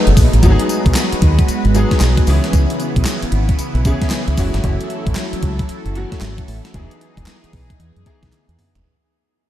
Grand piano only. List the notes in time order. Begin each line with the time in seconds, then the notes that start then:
Already playing: F#3 A3 B3 D#4 A4
0.43 F#3 B3 D#4 F#4
0.51 G#4
1.74 F#3 B3 D#4 G#4
2.27 E3 B3 C#4 G#4
3.85 E3 B3 C#4 G#4
4.38 E3 G#3 C#4 F#4
4.44 A3
5.95 E3 A3 C#4 F#4
6.74 E3 B3 D#4 G#4
8.06 E3 B3 D#4 G#4